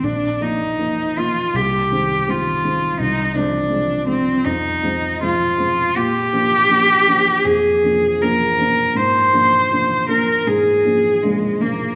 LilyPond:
<<
  \new Staff \with { instrumentName = "Cello" } { \time 4/4 \key bes \mixolydian \tempo 4 = 80 d'8 ees'4 f'8 g'4 f'4 | ees'8 d'4 c'8 ees'4 f'4 | g'2 aes'4 bes'4 | c''4. bes'8 aes'4 aes8 bes8 | }
  \new Staff \with { instrumentName = "Grand piano" } { \clef bass \time 4/4 \key bes \mixolydian bes,,8 <f bes f'>8 <f bes f'>8 <f bes f'>8 c,8 <ees aes c'>8 <ees aes c'>8 <ees aes c'>8 | c,8 <f aes c'>8 <f aes c'>8 <f aes c'>8 f,8 <f aes c'>8 <f aes c'>8 <f aes c'>8 | bes,8 <f bes d'>8 <f bes d'>8 <f bes d'>8 f,8 <f bes d'>8 <f bes d'>8 <f bes d'>8 | aes,8 <f bes d'>8 <f bes d'>8 <f bes d'>8 aes,8 <f bes d'>8 <f bes d'>8 <f bes d'>8 | }
>>